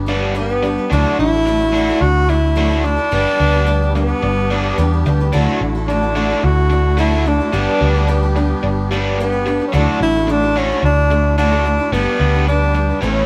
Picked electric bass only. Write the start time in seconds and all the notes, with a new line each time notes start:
Already playing: G1
0.92 D2
1.19 A1
2.01 D2
3.13 G1
3.40 D2
4.23 G1
4.78 E2
5.06 D2
5.34 D2
5.61 A1
6.44 D2
7.54 G1
7.81 D2
8.64 G1
9.74 D2
10.01 A1
10.83 D2
11.92 G1
12.20 D2
13.03 A1